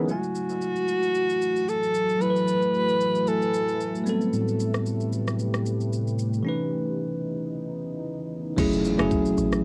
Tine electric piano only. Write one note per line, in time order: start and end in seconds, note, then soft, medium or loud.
0.00 0.11 E3 medium
0.00 0.10 B3 medium
0.00 0.10 C#4 medium
0.00 0.11 D#4 medium
0.00 0.10 G#4 loud
0.00 0.10 A#4 loud
0.06 2.16 F#3 medium
0.06 2.16 A3 medium
0.06 2.17 E4 medium
0.11 2.18 G#5 medium
2.18 3.24 F#3 medium
2.18 3.25 A3 medium
2.18 3.25 E4 medium
2.24 2.29 A4 medium
2.30 3.30 B4 medium
3.26 4.06 F#3 soft
3.26 4.07 A3 soft
3.26 4.07 E4 soft
3.26 4.07 G#5 medium
4.04 6.14 G3 medium
4.04 6.15 B3 medium
4.04 6.16 C4 medium
4.09 6.17 A4 medium
6.43 8.53 E3 medium
6.43 8.54 C#4 medium
6.43 8.55 D#4 medium
6.49 8.56 B4 medium
8.57 8.90 F#3 medium
8.57 8.90 A3 medium
8.57 8.91 C#4 medium
8.57 8.91 E4 medium
8.57 8.91 G#4 medium
8.98 9.64 F#3 medium
8.98 9.64 A3 medium
8.98 9.64 C#4 medium
8.98 9.64 E4 medium
8.98 9.64 G#4 medium